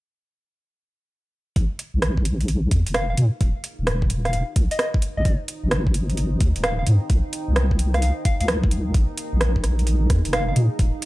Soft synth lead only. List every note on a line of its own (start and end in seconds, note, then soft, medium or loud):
2.95 3.04 F5 medium
3.10 3.15 F5 medium
4.25 4.30 F5 medium
4.33 4.43 F5 medium
4.71 4.76 D#5 medium
4.79 4.89 D#5 medium
5.17 5.31 D#5 medium
6.64 6.74 F5 medium
6.79 6.84 F5 medium
7.94 7.99 F5 medium
8.02 8.12 F5 medium
8.25 8.35 F5 medium
8.41 8.46 F5 medium
10.33 10.43 F5 medium
10.48 10.53 F5 medium